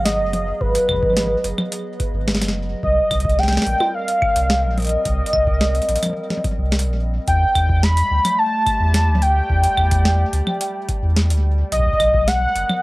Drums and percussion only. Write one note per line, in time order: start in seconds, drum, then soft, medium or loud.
0.06 snare loud
0.06 closed hi-hat loud
0.33 closed hi-hat medium
0.33 high tom medium
0.61 kick loud
0.75 closed hi-hat medium
0.89 kick medium
0.89 claves medium
0.91 kick medium
0.93 kick medium
0.96 kick soft
0.98 kick soft
1.00 kick soft
1.03 kick loud
1.03 high tom soft
1.06 high tom soft
1.10 high tom soft
1.13 snare loud
1.13 closed hi-hat loud
1.13 high tom medium
1.17 high tom medium
1.20 high tom medium
1.23 high tom medium
1.27 high tom medium
1.44 closed hi-hat medium
1.58 high tom medium
1.58 claves medium
1.72 closed hi-hat loud
2.00 kick loud
2.00 closed hi-hat medium
2.28 snare loud
2.35 snare loud
2.41 snare medium
2.41 closed hi-hat medium
2.48 snare medium
2.83 kick loud
3.11 kick medium
3.11 closed hi-hat medium
3.11 claves medium
3.20 closed hi-hat soft
3.25 kick loud
3.29 closed hi-hat soft
3.39 snare medium
3.43 snare medium
3.48 snare medium
3.53 snare medium
3.57 snare loud
3.62 snare loud
3.67 closed hi-hat medium
3.80 high tom medium
3.80 claves medium
4.08 closed hi-hat medium
4.22 kick loud
4.22 claves medium
4.36 closed hi-hat medium
4.50 snare loud
4.78 closed hi-hat soft
4.78 high tom medium
4.80 closed hi-hat soft
4.82 closed hi-hat soft
4.85 closed hi-hat soft
4.87 closed hi-hat soft
4.89 closed hi-hat soft
5.05 kick loud
5.05 closed hi-hat medium
5.26 closed hi-hat medium
5.33 kick medium
5.33 claves medium
5.47 kick loud
5.61 snare loud
5.75 closed hi-hat soft
5.82 closed hi-hat soft
5.89 closed hi-hat medium
5.96 closed hi-hat medium
6.03 closed hi-hat medium
6.03 high tom medium
6.03 claves medium
6.06 high tom medium
6.10 high tom medium
6.13 high tom soft
6.30 snare medium
6.30 high tom medium
6.37 high tom medium
6.44 kick loud
6.44 closed hi-hat medium
6.44 high tom medium
6.51 high tom soft
6.72 snare loud
6.79 closed hi-hat medium
7.28 kick loud
7.28 closed hi-hat medium
7.55 kick medium
7.55 closed hi-hat medium
7.55 claves medium
7.69 kick loud
7.83 snare loud
7.97 closed hi-hat medium
8.25 closed hi-hat medium
8.25 high tom loud
8.25 claves medium
8.66 kick loud
8.66 closed hi-hat soft
8.66 claves medium
8.94 snare loud
8.94 closed hi-hat loud
9.15 high tom loud
9.22 closed hi-hat soft
9.50 kick loud
9.64 closed hi-hat medium
9.78 kick medium
9.78 claves medium
9.91 kick loud
9.91 closed hi-hat medium
10.05 snare loud
10.33 closed hi-hat medium
10.47 high tom loud
10.47 claves medium
10.61 closed hi-hat medium
10.89 kick loud
10.89 closed hi-hat medium
11.16 snare loud
11.30 closed hi-hat medium
11.72 kick soft
11.72 closed hi-hat medium
11.79 kick medium
11.86 kick medium
11.93 kick medium
12.00 kick medium
12.00 closed hi-hat medium
12.00 claves medium
12.14 kick loud
12.28 snare loud
12.28 closed hi-hat medium
12.55 closed hi-hat medium
12.69 high tom loud
12.69 claves medium